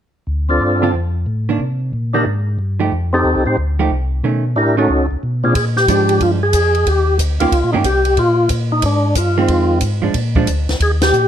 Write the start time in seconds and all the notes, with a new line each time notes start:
0.27 D2
0.49 C4 D4 F4 A4
0.61 G2
0.82 D3 C4 F4 A4
0.94 F2
1.26 A2
1.49 D#3 A#3 D4
1.60 C3
1.93 A#2
2.13 D#3 A#3 D4 D#4 G4 A#4
2.26 G#2
2.59 G2
2.80 F3 A3 D#4 G4
2.92 F2
3.13 C4 D#4 G4 A4
3.24 D#2
3.36 C2
3.45 A2 C4 D#4 G4 C5
3.57 D2
3.79 F3 A3 D#4 G4
3.90 C2
4.24 B2 D#3 A3 C#4
4.56 A2 D4 E4 G4 A#4
4.77 D#3 A3 C#4 D#4 F#4 A4
4.89 C#2
5.11 C#2
5.23 B2
5.44 A#2 C4 D4 F4 G#4
5.55 A#2 G#4, kick, ride
5.77 G4, snare
5.88 G#2 F3 G#3 D4, kick, hi-hat pedal, ride
6.09 ride
6.20 G2 F4, kick, ride
6.43 G#4
6.53 F2, kick, hi-hat pedal, ride
6.75 ride
6.86 D#2 G4, kick, ride
7.19 D2, kick, hi-hat pedal, ride
7.40 D2 D#3 A#3 C#4 F4 G4, ride
7.52 C#2, kick, ride
7.64 A#2
7.72 G2 D#3 A#3 C#4 D#4 G4
7.84 C2 G4, kick, hi-hat pedal, ride
8.05 ride
8.17 A#2 F4, kick, ride
8.49 A#2, kick, hi-hat pedal, ride
8.72 D#4
8.82 G#2 D4, kick, ride
9.15 G2 F4, kick, hi-hat pedal, ride
9.38 D#3 G#3 C4
9.48 F2, kick, ride
9.81 G#2, kick, hi-hat pedal, ride
10.02 G#2 F3 G#3 D4
10.14 A#2, kick, ride
10.35 F3 G#3 D4, kick
10.47 D2, kick, hi-hat pedal, ride
10.69 D2, snare, ride
10.80 D#2 G#4, kick, ride
11.02 G4, snare, ride
11.13 A#2, hi-hat pedal